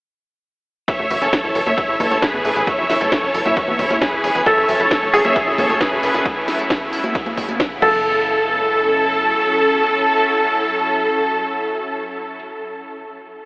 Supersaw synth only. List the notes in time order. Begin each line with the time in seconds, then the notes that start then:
0.88 C#5 E5
1.22 A4 C#5
1.66 C#5 E5
2.00 A4 C#5
2.22 G#4 B4
2.45 G#4 B4
2.67 C#5 E5
3.01 A4 C#5
3.46 C#5 E5
3.79 E4 C#5
4.01 G#4 B4
4.24 G#4 B4
4.46 C#5 E5
4.80 A4 C#5
5.25 C#5 E5
5.58 A4 C#5
5.81 G#4 B4
6.03 G#4 B4
7.82 A4